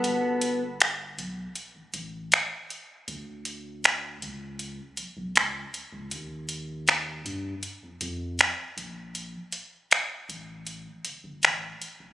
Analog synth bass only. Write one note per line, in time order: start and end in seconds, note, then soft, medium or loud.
0.04 1.14 G1 loud
1.18 1.47 B1 medium
1.75 1.83 A1 soft
1.94 2.38 A1 medium
3.08 4.18 D2 loud
4.22 4.80 C#2 medium
4.98 5.05 B1 soft
5.17 5.31 B1 medium
5.35 5.65 C#2 medium
5.92 6.13 C#2 medium
6.12 7.22 D#2 loud
7.25 7.55 G2 medium
7.82 7.90 F2 medium
8.01 8.45 F2 medium
8.77 9.36 A#1 loud
10.29 10.88 A1 loud
11.05 11.13 G1 soft
11.24 11.45 G1 medium
11.43 11.72 A1 medium
12.00 12.13 F1 medium